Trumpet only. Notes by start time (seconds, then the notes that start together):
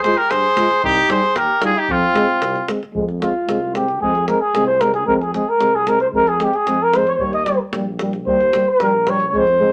0.02 C5
0.17 A#4
0.31 C5
0.84 G4
1.11 C5
1.37 A#4
1.65 G#4
1.78 G4
1.91 F4